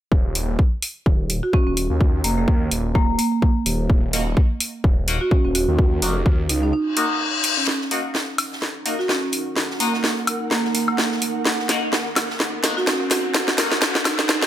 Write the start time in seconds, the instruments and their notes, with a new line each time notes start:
0.12 detuned saw bass D#1, kick
0.35 open hi-hat
0.59 kick
0.82 open hi-hat
1.06 detuned saw bass D#1, kick
1.30 open hi-hat
1.43 marimba F#4
1.53 marimba C#4, kick
1.67 detuned saw bass D#1, marimba C#4
1.77 open hi-hat
1.90 detuned saw bass D#2
2.01 kick
2.24 detuned saw bass F1, marimba A#3, open hi-hat
2.38 marimba A#3
2.48 detuned saw bass D#2, kick
2.71 detuned saw bass D#1, open hi-hat
2.95 marimba A#3, kick
3.19 marimba A#3, open hi-hat
3.32 marimba A#3
3.42 kick
3.66 detuned saw bass D#1, open hi-hat
3.90 detuned saw bass D#1, kick
4.13 synth stab A#3 D#4 F#4, open hi-hat
4.37 kick
4.60 open hi-hat
4.84 detuned saw bass D#1, kick
5.08 synth stab A#3 D#4 F#4, open hi-hat
5.21 marimba F#4
5.31 marimba C#4, kick
5.45 detuned saw bass D#1, marimba C#4
5.55 marimba F#4, open hi-hat
5.68 detuned saw bass D#2
5.79 kick
6.02 detuned saw bass F1, synth stab A#3 D#4 F#4, open hi-hat
6.26 detuned saw bass D#2, kick
6.49 detuned saw bass C#2, marimba D#4, open hi-hat
6.63 marimba D#4
6.73 marimba D#4, reverse cymbal
6.97 synth stab A#3 D#4 F#4, open hi-hat
7.44 open hi-hat
7.57 marimba C#4
7.67 marimba C#4, ambient pad D#4, snare, closed hi-hat, riser
7.81 snare
7.91 synth stab A#3 D#4 F#4, snare, closed hi-hat, open hi-hat
8.04 ambient pad A#4
8.14 snare, closed hi-hat
8.38 open hi-hat, high woodblock
8.52 snare
8.62 snare, closed hi-hat
8.83 synth stab A#3 D#4 F#4, ambient pad F#5, closed hi-hat, open hi-hat
8.99 marimba F#4, snare
9.09 marimba C#4, snare, closed hi-hat
9.23 marimba C#4
9.32 closed hi-hat, open hi-hat
9.56 snare, closed hi-hat
9.70 snare
9.80 synth stab A#3 D#4 F#4, marimba A#3, snare, closed hi-hat, open hi-hat
9.93 marimba A#3, snare
10.04 snare, closed hi-hat
10.16 closed hi-hat
10.27 closed hi-hat, open hi-hat, high woodblock
10.51 marimba A#3, snare, closed hi-hat
10.64 snare
10.75 marimba A#3, snare, closed hi-hat, open hi-hat
10.88 marimba A#3, high woodblock
10.98 snare, closed hi-hat
11.11 snare
11.22 closed hi-hat, open hi-hat
11.45 snare, closed hi-hat
11.59 snare
11.68 synth stab A#3 D#4 F#4, snare, closed hi-hat, open hi-hat
11.93 snare, closed hi-hat
12.16 snare, open hi-hat, high woodblock
12.30 snare
12.40 snare, closed hi-hat
12.63 synth stab A#3 D#4 F#4, snare, closed hi-hat, open hi-hat
12.77 marimba F#4, snare
12.87 marimba C#4, snare, closed hi-hat
13.01 marimba C#4
13.11 marimba F#4, snare, closed hi-hat, open hi-hat
13.34 snare, closed hi-hat
13.48 snare
13.58 synth stab A#3 D#4 F#4, snare, closed hi-hat, open hi-hat
13.72 snare
13.81 snare, closed hi-hat
13.95 snare, closed hi-hat
14.05 marimba D#4, snare, closed hi-hat, open hi-hat, high woodblock
14.19 marimba D#4, snare
14.29 marimba D#4, snare, closed hi-hat, reverse cymbal
14.42 snare